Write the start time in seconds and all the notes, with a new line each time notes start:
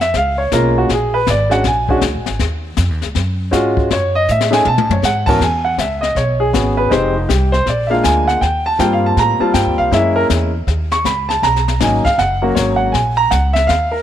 Already playing: F2
0.01 E5, snare
0.14 C#2 F5, brush sweep, kick, snare
0.38 C#5
0.52 B1 G#3 A#3 C#4 F4 A#4, kick, snare, hi-hat pedal
0.78 F#4
0.89 A#1, brush sweep, kick, snare
0.94 G#4
1.14 B4
1.27 G#1 D5, kick, snare, hi-hat pedal
1.50 G#3 C#4 D4 F#4 F#5, snare
1.64 A#1 G#5, brush sweep, kick, snare
1.89 G#3 C#4 D4 F#4, kick
2.01 D2, kick, snare, hi-hat pedal
2.14 A#1
2.26 G#1, snare
2.39 D#2, brush sweep, kick, snare
2.77 F2, kick, snare, hi-hat pedal
2.90 D#2
3.02 C#2, snare
3.15 F#2, brush sweep, kick, snare
3.51 G#2 G#3 C#4 F4 F#4, kick, snare, hi-hat pedal
3.77 kick
3.90 F#2 C#5, brush sweep, kick, snare
4.15 D#5
4.29 A2 E5, hi-hat pedal
4.41 snare
4.51 A3 C#4 D#4 G#4 G#5, snare
4.65 B2 A5, high tom
4.78 A2, high tom
4.89 F#2 C#5, high tom
5.02 G#2 F#5, snare, hi-hat pedal
5.26 E3 B3 C#4 F#4 A#4 A5, kick, crash
5.40 E2 G#5, brush sweep, kick, snare
5.65 F#5
5.78 C#2 E5, kick, snare, hi-hat pedal
6.01 D#5, snare
6.15 B1 C#5, brush sweep, kick, snare
6.40 G#4
6.53 G#1 B3 C#4 F#4 G#4, kick, snare, hi-hat pedal
6.77 B4
6.90 F1 G#3 C4 D#4 G4 C5, brush sweep, kick, snare
7.15 D#4
7.29 C2 G4, kick, snare, hi-hat pedal
7.52 C5, snare
7.66 A#1 D5, brush sweep, kick, snare
7.87 G#3 A#3 E5
7.91 D4 F4 F5
8.04 D2 G#5, kick, snare, hi-hat pedal
8.28 F#5, snare
8.41 D#2 G5, brush sweep, kick, snare
8.66 A5
8.78 G2 G3 A#3 C4 F4 G5, kick, snare, hi-hat pedal
8.93 F5
9.06 A5
9.17 A2 A#5, brush sweep, kick, snare
9.40 G3 A#3 C4 F4 A5, muted upright bass stroke
9.54 G2 G5, kick, snare, hi-hat pedal
9.66 D#2
9.78 C2 F5
9.91 F#2 G#3 A#3 C#4 E4 E5, brush sweep, kick, snare
10.16 A#4
10.29 E2, kick, snare, hi-hat pedal
10.67 D#2, brush sweep, kick, snare
10.92 C#6, snare
11.04 C#2 B5, kick, snare, hi-hat pedal
11.29 A5, snare
11.42 B1 A#5, brush sweep, kick, snare
11.56 snare
11.68 snare
11.80 G#1 F#3 A#3 C#4 D#4 G#5, kick, snare, hi-hat pedal
12.05 F5, muted upright bass stroke, kick, snare
12.18 F#1 F#5, brush sweep, kick, snare
12.42 F#3 A#3 C#4 F#4 A#4
12.55 G#1 C#5, kick, snare, hi-hat pedal
12.76 F#5
12.92 A#1 G#5, brush sweep, kick, snare
13.17 A#5
13.31 C#2 F#5, kick, snare, hi-hat pedal
13.53 E5, snare
13.67 D#2 F5, brush sweep, kick, snare
13.92 A#4